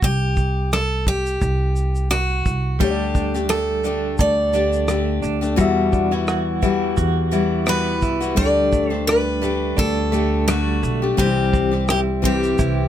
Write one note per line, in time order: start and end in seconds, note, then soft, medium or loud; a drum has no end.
0.02 1.37 C2 medium
0.02 0.73 G4 medium
0.02 kick loud
0.02 shaker medium
0.37 kick medium
0.37 shaker soft
0.73 1.05 A4 medium
0.73 cross-stick loud
0.73 shaker medium
1.07 2.10 G4 medium
1.07 kick medium
1.07 shaker soft
1.26 shaker soft
1.41 2.42 C2 medium
1.41 kick medium
1.41 shaker medium
1.76 shaker soft
1.95 shaker soft
2.11 2.80 F#4 medium
2.11 cross-stick medium
2.11 shaker medium
2.46 2.80 C2 medium
2.46 kick medium
2.46 shaker medium
2.80 4.15 D2 medium
2.80 3.34 D3 medium
2.80 5.57 G3 medium
2.80 5.55 A3 medium
2.80 3.34 A3 medium
2.80 3.34 D4 medium
2.80 3.46 G4 medium
2.80 3.33 G4 medium
2.80 5.56 G4 medium
2.80 kick loud
2.80 shaker medium
2.84 2.89 C#5 medium
2.90 5.60 D5 medium
3.15 3.83 D4 medium
3.15 kick medium
3.15 shaker soft
3.35 3.84 A3 soft
3.35 3.85 D4 soft
3.35 3.85 G4 soft
3.35 cross-stick soft
3.35 shaker soft
3.49 4.15 A4 medium
3.49 4.18 A4 medium
3.49 cross-stick loud
3.49 shaker medium
3.84 4.52 D3 medium
3.84 4.53 A3 medium
3.84 4.53 D4 soft
3.84 4.54 D4 medium
3.84 4.55 G4 medium
3.84 shaker medium
4.18 5.20 D2 loud
4.18 5.66 A4 medium
4.18 5.20 D5 medium
4.18 kick medium
4.18 shaker medium
4.53 4.87 D3 medium
4.53 4.88 A3 soft
4.53 5.21 D4 medium
4.53 4.88 D4 medium
4.53 4.88 G4 medium
4.53 shaker soft
4.73 shaker soft
4.88 5.43 D3 medium
4.88 5.66 A3 medium
4.88 5.41 A3 medium
4.88 5.41 D4 medium
4.88 5.40 G4 medium
4.88 cross-stick medium
4.88 shaker medium
5.22 5.59 D2 medium
5.22 5.66 D4 medium
5.22 shaker medium
5.41 5.57 A3 soft
5.41 5.57 D4 medium
5.41 5.57 G4 medium
5.41 shaker soft
5.56 6.12 E2 medium
5.56 6.94 E2 medium
5.56 6.12 B2 medium
5.56 6.12 E3 medium
5.56 8.33 G3 medium
5.56 6.12 G3 medium
5.56 8.37 G3 medium
5.56 6.11 E4 medium
5.56 6.10 F#4 medium
5.56 8.34 F#4 medium
5.56 kick loud
5.56 shaker medium
5.61 8.35 E5 medium
5.92 6.12 D4 medium
5.92 kick medium
5.92 shaker soft
6.11 6.61 E3 soft
6.11 6.62 G3 soft
6.11 6.61 E4 soft
6.11 6.62 E4 soft
6.11 6.63 F#4 medium
6.11 cross-stick soft
6.28 6.96 F#4 medium
6.28 cross-stick loud
6.28 shaker medium
6.62 7.30 E3 medium
6.62 7.32 G3 medium
6.62 7.31 E4 medium
6.62 7.32 E4 medium
6.62 7.32 F#4 medium
6.62 kick medium
6.62 shaker soft
6.97 8.02 E2 medium
6.97 8.45 F#4 medium
6.97 kick medium
6.97 shaker medium
7.31 7.65 E3 medium
7.31 7.65 G3 medium
7.31 8.02 E4 medium
7.31 7.66 E4 medium
7.31 7.66 F#4 medium
7.31 shaker soft
7.66 8.21 E3 medium
7.66 8.21 G3 medium
7.66 8.45 B3 medium
7.66 8.20 E4 medium
7.66 8.19 F#4 medium
7.66 8.37 B4 medium
7.66 cross-stick loud
7.66 shaker medium
8.02 8.35 C2 medium
8.02 8.46 E4 medium
8.02 kick medium
8.02 shaker soft
8.21 8.36 E3 soft
8.21 8.36 G3 soft
8.21 8.36 E4 soft
8.21 8.37 F#4 medium
8.21 shaker medium
8.35 9.74 D2 medium
8.35 8.91 D3 medium
8.35 11.13 G3 medium
8.35 10.47 G3 medium
8.35 8.91 A3 medium
8.35 8.90 D4 medium
8.35 11.14 D4 medium
8.35 8.89 G4 medium
8.35 8.91 D5 medium
8.35 kick loud
8.35 shaker medium
8.39 8.46 G4 medium
8.46 11.18 A4 medium
8.72 9.41 A3 medium
8.72 kick medium
8.72 shaker soft
8.90 9.41 A3 soft
8.90 9.41 D4 soft
8.90 9.42 G4 soft
8.90 9.07 C5 medium
8.90 cross-stick soft
9.07 9.76 D4 medium
9.07 9.78 B4 loud
9.07 cross-stick loud
9.07 shaker medium
9.42 10.11 D3 medium
9.42 10.11 A3 soft
9.42 10.12 A3 medium
9.42 10.12 D4 medium
9.42 10.14 G4 medium
9.42 shaker soft
9.77 10.79 D2 loud
9.77 11.26 D4 medium
9.77 10.47 A4 medium
9.77 kick medium
9.77 shaker medium
10.12 10.46 D3 medium
10.12 10.81 A3 medium
10.12 10.47 A3 medium
10.12 10.47 D4 medium
10.12 10.49 G4 medium
10.12 shaker soft
10.48 11.02 D3 medium
10.48 11.18 G3 medium
10.48 11.02 A3 medium
10.48 11.02 D4 medium
10.48 11.19 F#4 medium
10.48 cross-stick loud
10.48 shaker medium
10.83 11.16 B1 medium
10.83 11.26 A3 medium
10.83 shaker medium
11.02 11.18 A3 soft
11.02 11.18 D4 soft
11.02 11.18 G4 medium
11.17 12.55 C2 medium
11.17 11.72 C3 medium
11.17 11.73 E3 medium
11.17 12.88 G3 medium
11.17 11.72 G3 medium
11.17 11.71 C4 medium
11.17 11.26 D4 soft
11.17 11.70 G4 medium
11.17 11.89 G4 medium
11.17 kick loud
11.17 shaker medium
11.21 12.88 C5 medium
11.26 12.88 E4 medium
11.53 12.23 C4 medium
11.53 kick medium
11.53 shaker soft
11.71 12.21 G3 soft
11.71 12.22 C4 soft
11.71 12.23 G4 soft
11.71 cross-stick soft
11.88 12.58 E4 medium
11.88 11.99 G4 medium
11.88 cross-stick loud
11.88 shaker medium
12.22 12.88 E3 medium
12.22 12.88 G3 medium
12.22 12.88 C4 medium
12.22 12.88 G4 medium
12.22 kick medium
12.22 shaker soft
12.44 shaker soft
12.59 12.88 C2 medium
12.59 12.88 E4 medium
12.59 kick medium
12.59 shaker medium